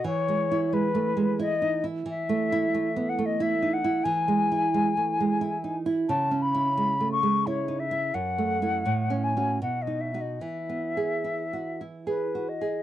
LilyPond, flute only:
\new Staff \with { instrumentName = "Flute" } { \time 3/4 \key e \major \tempo 4 = 88 cis''4 b'4 dis''8. r16 | e''4. fis''16 dis''16 e''8 fis''8 | gis''2. | a''8 b''4 cis'''8 cis''8 e''8 |
fis''4. gis''8 fis''16 dis''16 e''16 dis''16 | e''2 b'8 dis''8 | }